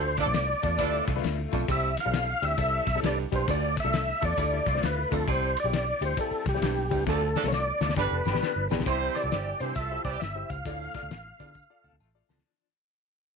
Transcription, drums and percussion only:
0.17 kick medium
0.17 snare soft
0.17 ride medium
0.17 tambourine medium
0.33 snare loud
0.33 ride medium
0.33 tambourine loud
0.62 kick medium
0.62 ride medium
0.62 tambourine medium
0.78 kick medium
0.78 ride medium
0.78 tambourine medium
1.07 kick loud
1.07 snare soft
1.07 ride medium
1.07 tambourine soft
1.17 snare soft
1.24 snare loud
1.24 ride medium
1.24 tambourine loud
1.53 kick medium
1.53 ride medium
1.53 tambourine medium
1.68 kick loud
1.68 ride medium
1.68 tambourine medium
1.97 snare soft
1.97 ride medium
1.97 tambourine medium
2.14 snare loud
2.14 ride medium
2.14 tambourine loud
2.42 ride medium
2.42 tambourine medium
2.57 kick medium
2.57 ride medium
2.57 tambourine medium
2.87 kick loud
2.87 snare soft
2.87 ride medium
2.87 tambourine soft
2.97 snare soft
3.04 snare loud
3.04 ride medium
3.04 tambourine loud
3.32 kick medium
3.32 ride medium
3.32 tambourine medium
3.48 kick loud
3.48 ride medium
3.48 tambourine medium
3.76 kick medium
3.76 snare soft
3.76 ride medium
3.76 tambourine medium
3.93 snare loud
3.93 ride medium
3.93 tambourine loud
4.22 kick medium
4.22 ride medium
4.22 tambourine medium
4.37 kick medium
4.37 ride medium
4.37 tambourine loud
4.66 kick loud
4.66 snare soft
4.66 ride medium
4.66 tambourine medium
4.76 snare soft
4.83 snare loud
4.83 ride medium
4.83 tambourine loud
5.12 kick medium
5.12 ride medium
5.12 tambourine medium
5.28 kick loud
5.28 ride medium
5.28 tambourine medium
5.57 ride medium
5.57 tambourine medium
5.73 snare loud
5.73 ride medium
5.73 tambourine loud
6.01 ride medium
6.01 tambourine medium
6.17 kick medium
6.17 ride medium
6.17 tambourine medium
6.46 kick loud
6.46 snare soft
6.46 ride medium
6.46 tambourine soft
6.55 snare soft
6.62 snare loud
6.62 ride medium
6.62 tambourine loud
6.91 kick medium
6.91 ride medium
6.91 tambourine medium
7.07 kick loud
7.07 snare medium
7.07 tambourine medium
7.36 snare medium
7.36 tambourine medium
7.44 snare medium
7.52 snare medium
7.52 tambourine loud
7.81 snare medium
7.81 tambourine medium
7.89 snare medium
7.96 kick medium
7.96 snare medium
7.96 tambourine medium
8.25 snare medium
8.25 tambourine medium
8.35 snare medium
8.42 snare loud
8.42 tambourine loud
8.71 snare loud
8.71 tambourine medium
8.79 snare loud
8.86 kick loud
8.86 closed hi-hat loud
8.86 tambourine medium
9.15 snare soft
9.15 closed hi-hat medium
9.15 tambourine medium
9.31 snare loud
9.31 closed hi-hat loud
9.31 tambourine medium
9.60 closed hi-hat medium
9.60 tambourine medium
9.75 kick medium
9.75 closed hi-hat loud
9.75 tambourine medium
10.04 kick medium
10.04 snare soft
10.04 closed hi-hat medium
10.04 tambourine soft
10.21 snare loud
10.21 closed hi-hat medium
10.21 tambourine loud
10.50 kick medium
10.50 closed hi-hat medium
10.50 tambourine medium
10.65 kick loud
10.65 closed hi-hat loud
10.65 tambourine medium
10.94 kick medium
10.94 snare soft
10.94 closed hi-hat medium
10.94 tambourine medium
11.11 snare loud
11.11 closed hi-hat loud
11.11 tambourine loud
11.39 kick medium
11.39 closed hi-hat medium
11.39 tambourine medium
11.54 kick medium
11.54 tambourine medium
11.84 tambourine soft
12.00 tambourine loud
12.29 snare loud
12.29 tambourine medium
12.38 snare loud

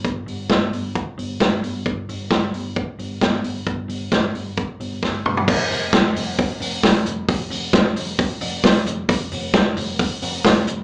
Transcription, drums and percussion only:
0.05 kick medium
0.05 closed hi-hat medium
0.28 open hi-hat medium
0.50 kick loud
0.50 snare medium
0.50 closed hi-hat medium
0.73 open hi-hat medium
0.95 kick medium
0.95 closed hi-hat medium
1.19 open hi-hat medium
1.40 kick medium
1.40 snare loud
1.40 closed hi-hat medium
1.64 open hi-hat medium
1.86 kick loud
1.86 closed hi-hat medium
2.09 open hi-hat medium
2.31 kick loud
2.31 snare loud
2.31 closed hi-hat medium
2.54 open hi-hat medium
2.76 kick medium
2.76 closed hi-hat medium
2.99 open hi-hat medium
3.21 kick loud
3.21 snare loud
3.21 closed hi-hat medium
3.44 open hi-hat medium
3.66 kick medium
3.66 closed hi-hat medium
3.89 open hi-hat medium
4.12 kick loud
4.12 snare medium
4.12 closed hi-hat medium
4.35 open hi-hat medium
4.57 kick medium
4.57 closed hi-hat medium
4.80 open hi-hat medium
5.03 kick medium
5.03 snare soft
5.26 mid tom medium
5.37 floor tom medium
5.48 kick loud
5.48 crash loud
5.71 hi-hat pedal medium
5.71 open hi-hat medium
5.93 kick loud
5.93 snare loud
5.93 hi-hat pedal medium
5.93 open hi-hat medium
6.16 hi-hat pedal medium
6.16 open hi-hat medium
6.39 kick loud
6.39 hi-hat pedal medium
6.39 open hi-hat medium
6.61 hi-hat pedal medium
6.61 open hi-hat medium
6.83 kick loud
6.83 snare loud
6.83 hi-hat pedal medium
6.83 open hi-hat medium
7.06 hi-hat pedal medium
7.06 open hi-hat medium
7.28 kick loud
7.28 hi-hat pedal medium
7.28 open hi-hat medium
7.51 hi-hat pedal medium
7.51 open hi-hat medium
7.73 kick loud
7.73 snare loud
7.73 hi-hat pedal medium
7.73 open hi-hat medium
7.96 hi-hat pedal medium
7.96 open hi-hat medium
8.18 kick loud
8.18 hi-hat pedal medium
8.18 open hi-hat medium
8.41 hi-hat pedal medium
8.41 open hi-hat medium
8.64 kick loud
8.64 snare loud
8.64 hi-hat pedal medium
8.64 open hi-hat medium
8.86 hi-hat pedal medium
8.86 open hi-hat medium
9.09 kick loud
9.09 hi-hat pedal medium
9.09 open hi-hat medium
9.31 hi-hat pedal medium
9.31 open hi-hat medium
9.54 kick loud
9.54 snare loud
9.54 hi-hat pedal medium
9.54 open hi-hat medium
9.77 hi-hat pedal medium
9.77 open hi-hat medium
9.99 kick loud
9.99 hi-hat pedal medium
9.99 open hi-hat medium
10.22 hi-hat pedal medium
10.22 open hi-hat medium
10.44 kick loud
10.44 snare loud
10.44 hi-hat pedal medium
10.44 open hi-hat medium
10.67 hi-hat pedal medium
10.67 open hi-hat medium

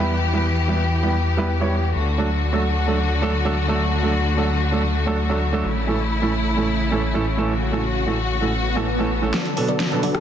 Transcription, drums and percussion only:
9.34 snare soft
9.34 closed hi-hat medium
9.45 closed hi-hat soft
9.57 open hi-hat loud
9.69 closed hi-hat soft
9.80 snare soft
9.80 closed hi-hat medium
9.92 closed hi-hat soft
10.03 open hi-hat loud
10.15 cross-stick medium
10.15 closed hi-hat soft

